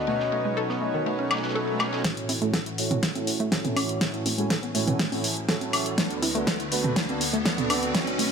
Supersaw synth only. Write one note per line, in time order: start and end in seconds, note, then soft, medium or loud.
0.08 2.02 B2 medium
0.08 2.02 C#4 medium
0.08 2.02 D#4 medium
0.08 2.02 F#4 medium
0.08 2.02 B4 medium
0.08 2.02 C#5 medium
2.04 2.25 A2 medium
2.42 2.54 A2 medium
2.42 2.54 C#4 medium
2.42 2.54 E4 medium
2.42 2.54 F#4 medium
2.42 2.54 A4 medium
2.42 2.54 C#5 medium
2.78 2.99 A2 medium
2.78 2.99 C#4 medium
2.78 2.99 E4 medium
2.78 2.99 F#4 medium
2.78 2.99 A4 medium
2.78 2.99 C#5 medium
3.15 3.28 A2 medium
3.15 3.28 C#4 medium
3.15 3.28 E4 medium
3.15 3.28 F#4 medium
3.15 3.28 A4 medium
3.15 3.28 C#5 medium
3.52 3.98 A2 medium
3.52 3.98 C#4 medium
3.52 3.98 E4 medium
3.52 3.98 F#4 medium
3.52 3.98 A4 medium
3.52 3.98 C#5 loud
4.01 4.22 C#4 medium
4.01 4.22 E4 medium
4.01 4.22 F#4 medium
4.01 4.22 A4 medium
4.01 4.22 C#5 medium
4.38 4.51 A2 medium
4.38 4.51 C#4 medium
4.38 4.51 E4 medium
4.38 4.51 F#4 medium
4.38 4.51 A4 medium
4.38 4.51 C#5 medium
4.75 4.96 A2 medium
4.75 4.96 C#4 medium
4.75 4.96 E4 medium
4.75 4.96 F#4 medium
4.75 4.96 A4 medium
4.75 4.96 C#5 medium
5.12 5.25 A2 medium
5.12 5.25 C#4 medium
5.12 5.25 E4 medium
5.12 5.25 F#4 medium
5.12 5.25 A4 medium
5.12 5.25 C#5 medium
5.49 5.95 A2 medium
5.49 5.95 C#4 medium
5.49 5.95 E4 medium
5.49 5.95 F#4 medium
5.49 5.95 A4 medium
5.49 5.95 C#5 loud
5.98 6.19 D3 medium
5.98 6.19 B3 medium
5.98 6.19 D4 medium
5.98 6.19 B4 medium
6.35 6.48 D3 medium
6.35 6.48 B3 medium
6.35 6.48 D4 medium
6.35 6.48 F#4 medium
6.35 6.48 A4 medium
6.35 6.48 B4 medium
6.72 6.92 D3 medium
6.72 6.92 B3 medium
6.72 6.92 D4 medium
6.72 6.92 F#4 medium
6.72 6.92 A4 medium
6.72 6.92 B4 medium
7.09 7.21 D3 medium
7.09 7.21 B3 medium
7.09 7.21 D4 medium
7.09 7.21 F#4 medium
7.09 7.21 A4 medium
7.09 7.21 B4 medium
7.45 7.92 D3 loud
7.45 7.92 B3 medium
7.45 7.92 D4 medium
7.45 7.92 F#4 medium
7.45 7.92 A4 medium
7.45 7.92 B4 loud
7.95 8.15 B2 medium
7.95 8.15 C#4 medium
7.95 8.15 F#4 medium
7.95 8.15 B4 medium
7.95 8.15 C#5 medium